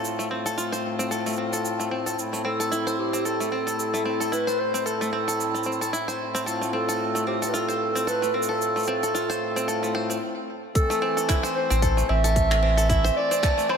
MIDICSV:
0, 0, Header, 1, 6, 480
1, 0, Start_track
1, 0, Key_signature, 0, "minor"
1, 0, Tempo, 535714
1, 35, Time_signature, 4, 2, 24, 8
1, 12341, End_track
2, 0, Start_track
2, 0, Title_t, "Clarinet"
2, 0, Program_c, 0, 71
2, 2192, Note_on_c, 0, 69, 82
2, 2640, Note_off_c, 0, 69, 0
2, 2674, Note_on_c, 0, 67, 72
2, 2913, Note_on_c, 0, 69, 82
2, 2926, Note_off_c, 0, 67, 0
2, 3385, Note_off_c, 0, 69, 0
2, 3391, Note_on_c, 0, 69, 87
2, 3874, Note_on_c, 0, 71, 97
2, 3888, Note_off_c, 0, 69, 0
2, 4115, Note_on_c, 0, 72, 87
2, 4128, Note_off_c, 0, 71, 0
2, 4357, Note_on_c, 0, 69, 77
2, 4370, Note_off_c, 0, 72, 0
2, 5316, Note_off_c, 0, 69, 0
2, 6037, Note_on_c, 0, 69, 90
2, 6482, Note_off_c, 0, 69, 0
2, 6520, Note_on_c, 0, 67, 69
2, 6602, Note_off_c, 0, 67, 0
2, 6700, Note_on_c, 0, 71, 71
2, 6758, Note_on_c, 0, 69, 82
2, 6772, Note_off_c, 0, 71, 0
2, 7239, Note_on_c, 0, 71, 95
2, 7252, Note_off_c, 0, 69, 0
2, 7481, Note_on_c, 0, 69, 90
2, 7494, Note_off_c, 0, 71, 0
2, 9158, Note_off_c, 0, 69, 0
2, 9635, Note_on_c, 0, 69, 106
2, 10081, Note_off_c, 0, 69, 0
2, 10356, Note_on_c, 0, 72, 100
2, 10835, Note_on_c, 0, 76, 111
2, 10849, Note_off_c, 0, 72, 0
2, 11553, Note_off_c, 0, 76, 0
2, 11558, Note_on_c, 0, 76, 117
2, 11780, Note_off_c, 0, 76, 0
2, 11796, Note_on_c, 0, 74, 117
2, 12279, Note_on_c, 0, 72, 99
2, 12292, Note_off_c, 0, 74, 0
2, 12341, Note_off_c, 0, 72, 0
2, 12341, End_track
3, 0, Start_track
3, 0, Title_t, "Five-string banjo"
3, 0, Program_c, 1, 105
3, 0, Note_on_c, 1, 69, 67
3, 156, Note_off_c, 1, 69, 0
3, 169, Note_on_c, 1, 57, 64
3, 269, Note_off_c, 1, 57, 0
3, 276, Note_on_c, 1, 60, 72
3, 403, Note_off_c, 1, 60, 0
3, 410, Note_on_c, 1, 69, 65
3, 505, Note_off_c, 1, 69, 0
3, 516, Note_on_c, 1, 65, 83
3, 636, Note_off_c, 1, 65, 0
3, 649, Note_on_c, 1, 72, 84
3, 875, Note_off_c, 1, 72, 0
3, 888, Note_on_c, 1, 60, 76
3, 984, Note_off_c, 1, 60, 0
3, 994, Note_on_c, 1, 69, 70
3, 1115, Note_off_c, 1, 69, 0
3, 1132, Note_on_c, 1, 57, 63
3, 1225, Note_off_c, 1, 57, 0
3, 1235, Note_on_c, 1, 60, 61
3, 1356, Note_off_c, 1, 60, 0
3, 1370, Note_on_c, 1, 69, 59
3, 1596, Note_off_c, 1, 69, 0
3, 1609, Note_on_c, 1, 57, 63
3, 1709, Note_off_c, 1, 57, 0
3, 1714, Note_on_c, 1, 60, 61
3, 1842, Note_off_c, 1, 60, 0
3, 1848, Note_on_c, 1, 69, 63
3, 1943, Note_off_c, 1, 69, 0
3, 2087, Note_on_c, 1, 57, 64
3, 2188, Note_off_c, 1, 57, 0
3, 2192, Note_on_c, 1, 60, 69
3, 2321, Note_off_c, 1, 60, 0
3, 2328, Note_on_c, 1, 69, 59
3, 2424, Note_off_c, 1, 69, 0
3, 2433, Note_on_c, 1, 64, 82
3, 2555, Note_off_c, 1, 64, 0
3, 2569, Note_on_c, 1, 72, 88
3, 2796, Note_off_c, 1, 72, 0
3, 2806, Note_on_c, 1, 60, 75
3, 2903, Note_off_c, 1, 60, 0
3, 2914, Note_on_c, 1, 69, 66
3, 3035, Note_off_c, 1, 69, 0
3, 3049, Note_on_c, 1, 57, 55
3, 3144, Note_off_c, 1, 57, 0
3, 3153, Note_on_c, 1, 60, 64
3, 3275, Note_off_c, 1, 60, 0
3, 3286, Note_on_c, 1, 69, 64
3, 3514, Note_off_c, 1, 69, 0
3, 3527, Note_on_c, 1, 57, 65
3, 3628, Note_off_c, 1, 57, 0
3, 3632, Note_on_c, 1, 60, 62
3, 3761, Note_off_c, 1, 60, 0
3, 3766, Note_on_c, 1, 69, 64
3, 3863, Note_off_c, 1, 69, 0
3, 3871, Note_on_c, 1, 64, 83
3, 3994, Note_off_c, 1, 64, 0
3, 4006, Note_on_c, 1, 72, 93
3, 4234, Note_off_c, 1, 72, 0
3, 4247, Note_on_c, 1, 60, 80
3, 4343, Note_off_c, 1, 60, 0
3, 4352, Note_on_c, 1, 69, 68
3, 4475, Note_off_c, 1, 69, 0
3, 4490, Note_on_c, 1, 57, 71
3, 4584, Note_off_c, 1, 57, 0
3, 4594, Note_on_c, 1, 60, 69
3, 4715, Note_off_c, 1, 60, 0
3, 4729, Note_on_c, 1, 69, 61
3, 4956, Note_off_c, 1, 69, 0
3, 4968, Note_on_c, 1, 57, 62
3, 5069, Note_off_c, 1, 57, 0
3, 5072, Note_on_c, 1, 60, 64
3, 5201, Note_off_c, 1, 60, 0
3, 5208, Note_on_c, 1, 69, 64
3, 5304, Note_off_c, 1, 69, 0
3, 5313, Note_on_c, 1, 64, 84
3, 5435, Note_off_c, 1, 64, 0
3, 5447, Note_on_c, 1, 72, 89
3, 5675, Note_off_c, 1, 72, 0
3, 5686, Note_on_c, 1, 60, 89
3, 5783, Note_off_c, 1, 60, 0
3, 5791, Note_on_c, 1, 69, 70
3, 5914, Note_off_c, 1, 69, 0
3, 5927, Note_on_c, 1, 57, 61
3, 6023, Note_off_c, 1, 57, 0
3, 6031, Note_on_c, 1, 60, 71
3, 6154, Note_off_c, 1, 60, 0
3, 6169, Note_on_c, 1, 69, 69
3, 6396, Note_off_c, 1, 69, 0
3, 6405, Note_on_c, 1, 57, 67
3, 6508, Note_off_c, 1, 57, 0
3, 6512, Note_on_c, 1, 60, 69
3, 6641, Note_off_c, 1, 60, 0
3, 6649, Note_on_c, 1, 69, 62
3, 6744, Note_off_c, 1, 69, 0
3, 6752, Note_on_c, 1, 65, 88
3, 6875, Note_off_c, 1, 65, 0
3, 6885, Note_on_c, 1, 72, 76
3, 7114, Note_off_c, 1, 72, 0
3, 7127, Note_on_c, 1, 60, 84
3, 7223, Note_off_c, 1, 60, 0
3, 7232, Note_on_c, 1, 69, 72
3, 7354, Note_off_c, 1, 69, 0
3, 7367, Note_on_c, 1, 57, 67
3, 7463, Note_off_c, 1, 57, 0
3, 7473, Note_on_c, 1, 60, 60
3, 7595, Note_off_c, 1, 60, 0
3, 7605, Note_on_c, 1, 69, 70
3, 7834, Note_off_c, 1, 69, 0
3, 7848, Note_on_c, 1, 57, 68
3, 7949, Note_off_c, 1, 57, 0
3, 7953, Note_on_c, 1, 60, 76
3, 8082, Note_off_c, 1, 60, 0
3, 8091, Note_on_c, 1, 69, 66
3, 8185, Note_off_c, 1, 69, 0
3, 8195, Note_on_c, 1, 65, 83
3, 8316, Note_off_c, 1, 65, 0
3, 8329, Note_on_c, 1, 72, 96
3, 8556, Note_off_c, 1, 72, 0
3, 8568, Note_on_c, 1, 60, 84
3, 8664, Note_off_c, 1, 60, 0
3, 8672, Note_on_c, 1, 69, 70
3, 8795, Note_off_c, 1, 69, 0
3, 8806, Note_on_c, 1, 57, 64
3, 8902, Note_off_c, 1, 57, 0
3, 8912, Note_on_c, 1, 72, 82
3, 9035, Note_off_c, 1, 72, 0
3, 9047, Note_on_c, 1, 60, 66
3, 9148, Note_off_c, 1, 60, 0
3, 9766, Note_on_c, 1, 57, 82
3, 9868, Note_off_c, 1, 57, 0
3, 9873, Note_on_c, 1, 60, 81
3, 10002, Note_off_c, 1, 60, 0
3, 10007, Note_on_c, 1, 69, 74
3, 10103, Note_off_c, 1, 69, 0
3, 10112, Note_on_c, 1, 64, 94
3, 10234, Note_off_c, 1, 64, 0
3, 10244, Note_on_c, 1, 72, 101
3, 10473, Note_off_c, 1, 72, 0
3, 10487, Note_on_c, 1, 60, 92
3, 10583, Note_off_c, 1, 60, 0
3, 10593, Note_on_c, 1, 69, 74
3, 10715, Note_off_c, 1, 69, 0
3, 10726, Note_on_c, 1, 57, 71
3, 10823, Note_off_c, 1, 57, 0
3, 10834, Note_on_c, 1, 60, 71
3, 10956, Note_off_c, 1, 60, 0
3, 10968, Note_on_c, 1, 69, 74
3, 11195, Note_off_c, 1, 69, 0
3, 11207, Note_on_c, 1, 57, 75
3, 11309, Note_off_c, 1, 57, 0
3, 11312, Note_on_c, 1, 60, 76
3, 11441, Note_off_c, 1, 60, 0
3, 11445, Note_on_c, 1, 69, 77
3, 11542, Note_off_c, 1, 69, 0
3, 11552, Note_on_c, 1, 64, 95
3, 11674, Note_off_c, 1, 64, 0
3, 11687, Note_on_c, 1, 72, 100
3, 11915, Note_off_c, 1, 72, 0
3, 11927, Note_on_c, 1, 60, 96
3, 12023, Note_off_c, 1, 60, 0
3, 12031, Note_on_c, 1, 69, 88
3, 12154, Note_off_c, 1, 69, 0
3, 12164, Note_on_c, 1, 57, 75
3, 12262, Note_off_c, 1, 57, 0
3, 12269, Note_on_c, 1, 60, 74
3, 12341, Note_off_c, 1, 60, 0
3, 12341, End_track
4, 0, Start_track
4, 0, Title_t, "Harmonium"
4, 0, Program_c, 2, 20
4, 0, Note_on_c, 2, 45, 67
4, 0, Note_on_c, 2, 57, 60
4, 0, Note_on_c, 2, 60, 60
4, 0, Note_on_c, 2, 65, 78
4, 1919, Note_off_c, 2, 65, 0
4, 1920, Note_off_c, 2, 45, 0
4, 1921, Note_off_c, 2, 57, 0
4, 1955, Note_on_c, 2, 45, 65
4, 1956, Note_on_c, 2, 64, 68
4, 1957, Note_on_c, 2, 57, 56
4, 5759, Note_off_c, 2, 60, 0
4, 5759, Note_off_c, 2, 64, 0
4, 5795, Note_on_c, 2, 60, 62
4, 5797, Note_on_c, 2, 65, 81
4, 9119, Note_off_c, 2, 45, 0
4, 9120, Note_off_c, 2, 57, 0
4, 9121, Note_off_c, 2, 60, 0
4, 9122, Note_off_c, 2, 65, 0
4, 9632, Note_on_c, 2, 52, 80
4, 9633, Note_on_c, 2, 57, 70
4, 9633, Note_on_c, 2, 60, 86
4, 12341, Note_off_c, 2, 52, 0
4, 12341, Note_off_c, 2, 57, 0
4, 12341, Note_off_c, 2, 60, 0
4, 12341, End_track
5, 0, Start_track
5, 0, Title_t, "Sub bass"
5, 0, Program_c, 3, 38
5, 10488, Note_on_c, 3, 33, 94
5, 10777, Note_off_c, 3, 33, 0
5, 10834, Note_on_c, 3, 33, 86
5, 11738, Note_off_c, 3, 33, 0
5, 12341, End_track
6, 0, Start_track
6, 0, Title_t, "Drums"
6, 42, Note_on_c, 9, 82, 49
6, 132, Note_off_c, 9, 82, 0
6, 178, Note_on_c, 9, 82, 28
6, 267, Note_off_c, 9, 82, 0
6, 417, Note_on_c, 9, 82, 53
6, 506, Note_off_c, 9, 82, 0
6, 522, Note_on_c, 9, 82, 49
6, 612, Note_off_c, 9, 82, 0
6, 657, Note_on_c, 9, 82, 30
6, 746, Note_off_c, 9, 82, 0
6, 896, Note_on_c, 9, 82, 57
6, 986, Note_off_c, 9, 82, 0
6, 1001, Note_on_c, 9, 82, 45
6, 1091, Note_off_c, 9, 82, 0
6, 1135, Note_on_c, 9, 82, 27
6, 1161, Note_off_c, 9, 82, 0
6, 1161, Note_on_c, 9, 82, 20
6, 1187, Note_off_c, 9, 82, 0
6, 1187, Note_on_c, 9, 82, 16
6, 1213, Note_off_c, 9, 82, 0
6, 1213, Note_on_c, 9, 82, 14
6, 1302, Note_off_c, 9, 82, 0
6, 1374, Note_on_c, 9, 82, 54
6, 1464, Note_off_c, 9, 82, 0
6, 1480, Note_on_c, 9, 82, 50
6, 1570, Note_off_c, 9, 82, 0
6, 1616, Note_on_c, 9, 82, 29
6, 1706, Note_off_c, 9, 82, 0
6, 1856, Note_on_c, 9, 82, 56
6, 1945, Note_off_c, 9, 82, 0
6, 1962, Note_on_c, 9, 82, 42
6, 2051, Note_off_c, 9, 82, 0
6, 2096, Note_on_c, 9, 82, 30
6, 2186, Note_off_c, 9, 82, 0
6, 2337, Note_on_c, 9, 82, 54
6, 2426, Note_off_c, 9, 82, 0
6, 2442, Note_on_c, 9, 82, 49
6, 2531, Note_off_c, 9, 82, 0
6, 2576, Note_on_c, 9, 82, 27
6, 2666, Note_off_c, 9, 82, 0
6, 2815, Note_on_c, 9, 82, 57
6, 2904, Note_off_c, 9, 82, 0
6, 2920, Note_on_c, 9, 82, 44
6, 3009, Note_off_c, 9, 82, 0
6, 3056, Note_on_c, 9, 82, 27
6, 3146, Note_off_c, 9, 82, 0
6, 3296, Note_on_c, 9, 82, 52
6, 3386, Note_off_c, 9, 82, 0
6, 3402, Note_on_c, 9, 82, 49
6, 3491, Note_off_c, 9, 82, 0
6, 3537, Note_on_c, 9, 82, 28
6, 3626, Note_off_c, 9, 82, 0
6, 3776, Note_on_c, 9, 82, 58
6, 3866, Note_off_c, 9, 82, 0
6, 3881, Note_on_c, 9, 82, 46
6, 3971, Note_off_c, 9, 82, 0
6, 4016, Note_on_c, 9, 82, 25
6, 4106, Note_off_c, 9, 82, 0
6, 4257, Note_on_c, 9, 82, 52
6, 4347, Note_off_c, 9, 82, 0
6, 4362, Note_on_c, 9, 82, 47
6, 4452, Note_off_c, 9, 82, 0
6, 4498, Note_on_c, 9, 82, 27
6, 4588, Note_off_c, 9, 82, 0
6, 4738, Note_on_c, 9, 82, 55
6, 4828, Note_off_c, 9, 82, 0
6, 4843, Note_on_c, 9, 82, 45
6, 4933, Note_off_c, 9, 82, 0
6, 4976, Note_on_c, 9, 82, 24
6, 5048, Note_off_c, 9, 82, 0
6, 5048, Note_on_c, 9, 82, 21
6, 5128, Note_off_c, 9, 82, 0
6, 5128, Note_on_c, 9, 82, 18
6, 5217, Note_off_c, 9, 82, 0
6, 5217, Note_on_c, 9, 82, 54
6, 5307, Note_off_c, 9, 82, 0
6, 5323, Note_on_c, 9, 82, 42
6, 5413, Note_off_c, 9, 82, 0
6, 5456, Note_on_c, 9, 82, 29
6, 5546, Note_off_c, 9, 82, 0
6, 5697, Note_on_c, 9, 82, 54
6, 5787, Note_off_c, 9, 82, 0
6, 5803, Note_on_c, 9, 82, 46
6, 5893, Note_off_c, 9, 82, 0
6, 5938, Note_on_c, 9, 82, 26
6, 6027, Note_off_c, 9, 82, 0
6, 6177, Note_on_c, 9, 82, 57
6, 6267, Note_off_c, 9, 82, 0
6, 6417, Note_on_c, 9, 82, 45
6, 6506, Note_off_c, 9, 82, 0
6, 6655, Note_on_c, 9, 82, 52
6, 6745, Note_off_c, 9, 82, 0
6, 6761, Note_on_c, 9, 82, 46
6, 6851, Note_off_c, 9, 82, 0
6, 6896, Note_on_c, 9, 82, 27
6, 6985, Note_off_c, 9, 82, 0
6, 7137, Note_on_c, 9, 82, 52
6, 7226, Note_off_c, 9, 82, 0
6, 7242, Note_on_c, 9, 82, 47
6, 7332, Note_off_c, 9, 82, 0
6, 7378, Note_on_c, 9, 82, 26
6, 7467, Note_off_c, 9, 82, 0
6, 7551, Note_on_c, 9, 82, 54
6, 7640, Note_off_c, 9, 82, 0
6, 7722, Note_on_c, 9, 82, 46
6, 7812, Note_off_c, 9, 82, 0
6, 7856, Note_on_c, 9, 82, 12
6, 7874, Note_off_c, 9, 82, 0
6, 7874, Note_on_c, 9, 82, 14
6, 7882, Note_off_c, 9, 82, 0
6, 7882, Note_on_c, 9, 82, 16
6, 7910, Note_off_c, 9, 82, 0
6, 7910, Note_on_c, 9, 82, 19
6, 7927, Note_off_c, 9, 82, 0
6, 7927, Note_on_c, 9, 82, 21
6, 7945, Note_off_c, 9, 82, 0
6, 7945, Note_on_c, 9, 82, 24
6, 8035, Note_off_c, 9, 82, 0
6, 8096, Note_on_c, 9, 82, 53
6, 8186, Note_off_c, 9, 82, 0
6, 8203, Note_on_c, 9, 82, 46
6, 8292, Note_off_c, 9, 82, 0
6, 8337, Note_on_c, 9, 82, 27
6, 8426, Note_off_c, 9, 82, 0
6, 8578, Note_on_c, 9, 82, 53
6, 8667, Note_off_c, 9, 82, 0
6, 8681, Note_on_c, 9, 82, 51
6, 8771, Note_off_c, 9, 82, 0
6, 8816, Note_on_c, 9, 82, 27
6, 8905, Note_off_c, 9, 82, 0
6, 9056, Note_on_c, 9, 82, 50
6, 9146, Note_off_c, 9, 82, 0
6, 9634, Note_on_c, 9, 36, 115
6, 9636, Note_on_c, 9, 46, 68
6, 9642, Note_on_c, 9, 82, 55
6, 9724, Note_off_c, 9, 36, 0
6, 9725, Note_off_c, 9, 46, 0
6, 9732, Note_off_c, 9, 82, 0
6, 9777, Note_on_c, 9, 82, 30
6, 9866, Note_off_c, 9, 82, 0
6, 10017, Note_on_c, 9, 82, 66
6, 10107, Note_off_c, 9, 82, 0
6, 10114, Note_on_c, 9, 36, 106
6, 10115, Note_on_c, 9, 26, 82
6, 10115, Note_on_c, 9, 46, 70
6, 10121, Note_on_c, 9, 82, 60
6, 10204, Note_off_c, 9, 26, 0
6, 10204, Note_off_c, 9, 36, 0
6, 10204, Note_off_c, 9, 46, 0
6, 10211, Note_off_c, 9, 82, 0
6, 10256, Note_on_c, 9, 82, 33
6, 10345, Note_off_c, 9, 82, 0
6, 10494, Note_on_c, 9, 82, 64
6, 10584, Note_off_c, 9, 82, 0
6, 10594, Note_on_c, 9, 36, 105
6, 10595, Note_on_c, 9, 46, 69
6, 10601, Note_on_c, 9, 82, 57
6, 10684, Note_off_c, 9, 36, 0
6, 10684, Note_off_c, 9, 46, 0
6, 10691, Note_off_c, 9, 82, 0
6, 10736, Note_on_c, 9, 82, 31
6, 10826, Note_off_c, 9, 82, 0
6, 10969, Note_on_c, 9, 46, 44
6, 10975, Note_on_c, 9, 82, 63
6, 11059, Note_off_c, 9, 46, 0
6, 11065, Note_off_c, 9, 82, 0
6, 11074, Note_on_c, 9, 36, 103
6, 11075, Note_on_c, 9, 46, 70
6, 11082, Note_on_c, 9, 82, 54
6, 11164, Note_off_c, 9, 36, 0
6, 11165, Note_off_c, 9, 46, 0
6, 11172, Note_off_c, 9, 82, 0
6, 11210, Note_on_c, 9, 26, 81
6, 11217, Note_on_c, 9, 82, 32
6, 11300, Note_off_c, 9, 26, 0
6, 11306, Note_off_c, 9, 82, 0
6, 11451, Note_on_c, 9, 46, 44
6, 11457, Note_on_c, 9, 82, 62
6, 11540, Note_off_c, 9, 46, 0
6, 11547, Note_off_c, 9, 82, 0
6, 11555, Note_on_c, 9, 36, 112
6, 11556, Note_on_c, 9, 46, 61
6, 11563, Note_on_c, 9, 82, 52
6, 11644, Note_off_c, 9, 36, 0
6, 11646, Note_off_c, 9, 46, 0
6, 11653, Note_off_c, 9, 82, 0
6, 11698, Note_on_c, 9, 82, 34
6, 11788, Note_off_c, 9, 82, 0
6, 11937, Note_on_c, 9, 82, 69
6, 12026, Note_off_c, 9, 82, 0
6, 12035, Note_on_c, 9, 36, 116
6, 12036, Note_on_c, 9, 26, 87
6, 12036, Note_on_c, 9, 46, 73
6, 12043, Note_on_c, 9, 82, 63
6, 12125, Note_off_c, 9, 36, 0
6, 12126, Note_off_c, 9, 26, 0
6, 12126, Note_off_c, 9, 46, 0
6, 12132, Note_off_c, 9, 82, 0
6, 12175, Note_on_c, 9, 82, 35
6, 12265, Note_off_c, 9, 82, 0
6, 12274, Note_on_c, 9, 77, 54
6, 12341, Note_off_c, 9, 77, 0
6, 12341, End_track
0, 0, End_of_file